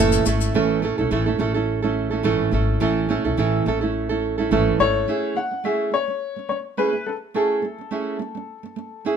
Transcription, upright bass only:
0.00 0.21 F#1 loud
0.26 0.49 G#1 medium
0.54 0.90 A1 medium
0.99 1.09 B1 medium
1.11 1.34 A1 medium
1.40 2.20 A1 medium
2.25 2.48 G#1 medium
2.52 2.76 G#1 medium
2.80 3.17 A1 medium
3.25 3.35 B1 medium
3.37 3.61 A1 medium
3.66 4.47 A1 medium
4.51 4.74 G#1 medium
4.80 5.03 G#1 medium

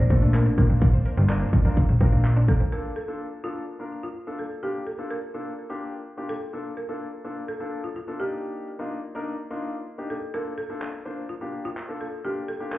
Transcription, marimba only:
0.00 0.32 C5 loud
0.34 0.57 A#4 medium
0.58 2.44 A#4 medium
2.49 2.73 A4 loud
2.72 2.97 A#4 loud
2.96 3.45 A4 loud
3.44 4.02 F4 medium
4.03 4.40 F4 medium
4.39 4.63 A4 medium
4.63 4.85 G4 medium
4.87 5.11 A4 medium
5.11 6.25 A#4 medium
6.29 6.74 A4 medium
6.77 7.21 A#4 medium
7.48 7.85 A4 loud
7.84 7.95 F4 medium
7.96 8.21 F4 medium
8.20 9.59 G4 medium
10.10 10.32 A4 medium
10.34 10.59 A#4 loud
10.58 11.31 A4 loud
11.29 11.63 F4 medium
11.65 12.02 F4 medium
12.01 12.25 A4 medium
12.25 12.47 G4 medium
12.48 12.73 A4 medium
12.72 12.78 A#4 loud

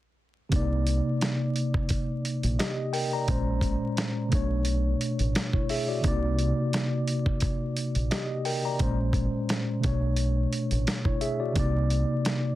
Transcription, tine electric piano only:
0.49 2.54 C3 medium
0.49 2.55 A#3 medium
0.54 2.56 D#4 medium
0.54 2.57 D5 medium
2.59 2.92 G4 medium
2.59 2.92 D#5 medium
2.93 3.11 A#4 medium
2.93 3.11 G5 medium
3.13 3.46 D5 medium
3.13 3.46 A#5 medium
3.27 4.31 A#2 medium
3.27 4.32 G#3 medium
3.27 4.32 C#4 medium
3.27 4.33 C5 medium
4.28 5.99 B2 medium
4.28 6.00 A3 medium
4.32 6.01 D4 medium
4.32 5.35 C#5 medium
5.54 5.69 E4 medium
5.54 5.69 C#5 medium
5.70 5.88 G#4 medium
5.70 5.88 E5 medium
5.88 6.22 F#4 medium
5.88 6.07 D5 medium
6.01 8.06 C3 medium
6.01 8.07 A#3 medium
6.06 8.08 D#4 medium
6.06 8.09 D5 medium
8.11 8.44 G4 medium
8.11 8.44 D#5 medium
8.45 8.63 A#4 medium
8.45 8.63 G5 medium
8.65 8.98 D5 medium
8.65 8.97 A#5 medium
8.79 9.83 A#2 medium
8.79 9.83 G#3 medium
8.79 9.84 C#4 medium
8.79 9.84 C5 medium
9.80 11.50 B2 medium
9.80 11.52 A3 medium
9.84 11.53 D4 medium
9.84 10.86 C#5 medium
11.05 11.21 E4 medium
11.05 11.20 C#5 medium
11.21 11.39 G#4 medium
11.21 11.39 E5 medium
11.40 11.73 F#4 medium
11.40 11.58 D5 medium
11.53 12.55 C3 medium
11.53 12.55 A#3 medium
11.57 12.55 D#4 medium
11.57 12.55 D5 medium

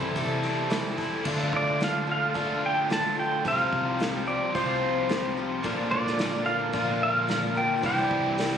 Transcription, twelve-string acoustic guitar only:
0.00 0.16 C4 soft
0.00 0.16 E4 soft
0.00 0.16 A4 soft
0.16 0.71 C3 medium
0.16 0.69 G3 medium
0.16 0.70 C4 medium
0.16 0.70 E4 medium
0.16 0.71 A4 medium
0.70 0.98 G3 medium
0.70 0.98 C4 medium
0.70 0.98 E4 medium
0.70 0.96 A4 medium
0.97 1.26 C4 soft
0.97 1.26 E4 soft
0.97 1.25 A4 soft
1.25 1.80 D3 medium
1.25 1.80 F3 medium
1.25 1.80 D4 medium
1.25 1.81 F4 medium
1.25 1.81 A4 medium
1.80 2.08 F3 medium
1.80 2.08 D4 medium
1.80 2.08 F4 medium
1.80 2.06 A4 medium
2.07 2.34 D4 soft
2.07 2.35 F4 soft
2.07 2.35 A4 medium
2.34 2.90 D3 medium
2.34 2.89 F3 medium
2.34 2.89 D4 medium
2.34 2.90 F4 medium
2.34 2.91 A4 medium
2.89 3.17 F3 soft
2.89 3.18 D4 soft
2.89 3.17 F4 medium
2.89 3.15 A4 medium
3.16 3.45 D4 soft
3.16 3.45 F4 soft
3.16 3.44 A4 soft
3.45 4.00 C3 medium
3.45 3.98 F3 medium
3.45 3.99 C4 medium
3.45 4.00 F4 medium
3.45 4.00 G4 medium
3.99 4.27 F3 medium
3.99 4.27 C4 medium
3.99 4.27 F4 medium
3.99 4.25 G4 medium
4.27 4.55 C4 soft
4.27 4.55 F4 soft
4.27 4.54 G4 soft
4.55 5.10 C3 medium
4.55 5.08 F3 medium
4.55 5.09 C4 medium
4.55 5.10 F4 medium
4.55 5.10 G4 medium
5.09 5.37 F3 medium
5.09 5.37 C4 medium
5.09 5.37 F4 medium
5.09 5.36 G4 medium
5.37 5.64 C4 soft
5.37 5.64 F4 medium
5.37 5.64 G4 medium
5.63 6.19 A#2 medium
5.63 6.19 D3 medium
5.63 6.18 F3 medium
5.63 6.19 A#3 medium
5.63 6.20 D4 medium
5.63 6.20 A#4 medium
6.19 6.47 F3 medium
6.19 6.46 A#3 medium
6.19 6.45 D4 medium
6.19 6.44 A#4 medium
6.45 6.72 F3 soft
6.45 6.73 A#3 soft
6.45 6.73 D4 soft
6.45 6.73 A#4 medium
6.73 7.28 A#2 medium
6.73 7.28 D3 medium
6.73 7.26 F3 medium
6.73 7.27 A#3 medium
6.73 7.28 D4 medium
6.73 7.29 A#4 medium
7.27 7.56 F3 medium
7.27 7.56 A#3 medium
7.27 7.55 D4 medium
7.27 7.54 A#4 medium
7.55 7.83 F3 soft
7.55 7.83 A#3 soft
7.55 7.82 D4 soft
7.55 7.83 A#4 soft
7.82 8.38 C3 medium
7.82 8.36 G3 medium
7.82 8.38 D4 medium
7.82 8.38 E4 medium
7.82 8.39 G4 medium
8.38 8.58 G3 medium
8.38 8.58 D4 medium
8.38 8.58 E4 medium
8.38 8.58 G4 medium

